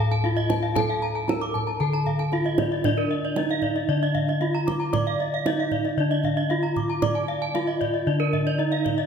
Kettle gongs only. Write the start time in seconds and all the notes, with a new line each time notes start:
Already playing: A2 F4
0.24 D#4
0.76 A4
1.28 D#4
1.80 D3
2.33 D#4
2.84 D4
3.37 D#4
3.89 D3
4.41 D#4
4.93 D5
5.45 D#4
5.97 D3
6.50 D#4
7.03 D5
7.55 D#4
8.07 D3
8.59 D#4